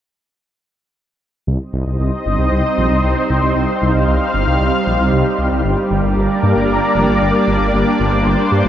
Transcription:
1.47 1.58 C2 medium
1.47 8.69 G3 medium
1.47 5.61 C4 medium
1.47 5.61 D#4 medium
1.47 5.61 C5 medium
1.47 3.54 D#5 medium
1.73 1.84 C2 medium
1.87 1.97 C2 medium
2.00 2.10 C2 medium
2.26 2.36 G1 medium
2.39 2.49 C2 medium
2.52 2.62 C2 medium
2.78 2.88 A#1 medium
2.91 3.01 C2 medium
3.04 3.14 C2 medium
3.30 3.40 C2 medium
3.43 3.53 C2 medium
3.56 3.66 C2 medium
3.56 5.63 F5 medium
3.82 3.92 C2 loud
3.95 4.05 C2 medium
4.08 4.18 C2 loud
4.34 4.45 G1 medium
4.47 4.58 C2 medium
4.60 4.71 C2 medium
4.87 4.97 A#1 medium
5.00 5.10 C2 medium
5.13 5.23 C2 medium
5.38 5.49 C2 medium
5.52 5.62 C2 medium
5.65 5.75 G1 medium
5.65 8.69 A#3 medium
5.65 8.69 D4 medium
5.65 7.71 A#4 medium
5.65 8.69 D5 medium
5.91 6.01 G1 medium
6.04 6.14 G1 medium
6.17 6.27 G1 loud
6.43 6.53 G2 medium
6.56 6.67 G1 medium
6.69 6.80 G1 loud
6.95 7.05 F1 medium
7.08 7.19 G1 medium
7.21 7.32 G1 loud
7.48 7.58 G1 medium
7.61 7.71 G1 medium
7.74 7.84 G1 loud
7.74 8.69 C5 medium
8.00 8.10 G1 medium
8.13 8.23 G1 medium
8.26 8.36 G1 medium
8.52 8.62 G2 medium
8.65 8.69 G1 medium

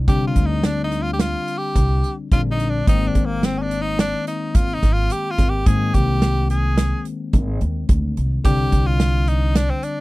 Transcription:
0.08 0.32 C3 medium
0.08 2.28 D3 medium
0.08 2.28 G3 medium
0.08 2.28 C4 medium
0.08 2.28 D4 medium
0.08 0.26 G4 loud
0.08 kick loud
0.08 closed hi-hat medium
0.27 0.47 F4 medium
0.36 1.33 D2 medium
0.36 kick medium
0.36 closed hi-hat medium
0.46 0.66 D#4 medium
0.64 0.83 D4 medium
0.64 snare medium
0.64 closed hi-hat medium
0.84 1.04 D#4 medium
0.92 snare soft
0.92 closed hi-hat medium
1.02 1.13 F4 medium
1.13 1.22 G4 medium
1.19 1.59 F4 medium
1.19 snare loud
1.19 closed hi-hat medium
1.48 closed hi-hat medium
1.58 2.13 G4 medium
1.75 2.00 C2 medium
1.75 kick medium
1.75 closed hi-hat medium
2.04 closed hi-hat medium
2.32 2.80 A#1 medium
2.32 2.88 D3 medium
2.32 2.88 G3 soft
2.32 2.87 C4 soft
2.32 2.88 D4 soft
2.32 2.41 F4 loud
2.32 kick loud
2.32 closed hi-hat medium
2.51 2.71 D#4 medium
2.60 snare soft
2.60 closed hi-hat medium
2.69 2.88 D4 medium
2.87 3.12 G#1 medium
2.87 5.63 D#3 medium
2.87 5.63 G#3 medium
2.87 5.63 A#3 medium
2.87 5.63 C4 medium
2.87 3.09 D#4 loud
2.87 kick loud
2.87 closed hi-hat medium
3.07 3.27 D4 medium
3.15 4.12 G#1 medium
3.15 kick medium
3.15 closed hi-hat medium
3.25 3.46 A#3 medium
3.43 3.59 C4 medium
3.43 snare medium
3.43 closed hi-hat medium
3.58 3.64 C#4 medium
3.62 3.83 D4 medium
3.71 closed hi-hat medium
3.81 3.99 D#4 medium
3.99 4.26 D4 loud
3.99 snare loud
3.99 closed hi-hat medium
4.27 4.57 D#4 medium
4.27 closed hi-hat medium
4.55 4.79 G#1 medium
4.55 4.75 F4 loud
4.55 kick loud
4.55 closed hi-hat medium
4.74 4.94 D#4 medium
4.83 5.07 G#1 medium
4.83 kick medium
4.83 snare soft
4.83 closed hi-hat medium
4.93 5.13 F4 loud
5.10 5.32 G4 medium
5.10 closed hi-hat medium
5.30 5.50 F4 medium
5.38 5.63 G#1 medium
5.38 kick medium
5.38 snare soft
5.38 closed hi-hat medium
5.49 5.68 G4 medium
5.66 5.91 G#2 medium
5.66 8.41 D#3 medium
5.66 8.41 G#3 soft
5.66 8.41 A#3 medium
5.66 8.41 C4 medium
5.66 5.96 G#4 loud
5.66 kick loud
5.66 closed hi-hat medium
5.94 6.91 C2 medium
5.94 6.50 G4 loud
5.94 kick medium
5.94 closed hi-hat medium
6.22 snare medium
6.22 closed hi-hat medium
6.50 7.02 G#4 medium
6.50 snare soft
6.50 closed hi-hat medium
6.78 snare loud
6.78 closed hi-hat medium
7.05 closed hi-hat medium
7.33 7.58 G#1 loud
7.33 kick medium
7.33 closed hi-hat medium
7.61 7.86 D#2 medium
7.61 closed hi-hat medium
7.89 8.14 D2 medium
7.89 kick loud
7.89 closed hi-hat medium
8.17 8.42 C2 medium
8.17 closed hi-hat medium
8.44 8.69 C2 loud
8.44 10.01 D3 medium
8.44 10.01 G3 soft
8.44 10.01 C4 medium
8.44 10.01 D4 medium
8.44 8.88 G4 loud
8.44 kick loud
8.44 closed hi-hat medium
8.72 9.69 C2 medium
8.72 kick medium
8.72 closed hi-hat medium
8.86 9.30 F4 loud
9.00 snare medium
9.00 closed hi-hat medium
9.28 9.58 D#4 medium
9.28 closed hi-hat medium
9.55 9.72 D4 medium
9.55 snare loud
9.55 closed hi-hat medium
9.70 9.86 C4 medium
9.83 10.01 D4 medium
9.83 closed hi-hat medium

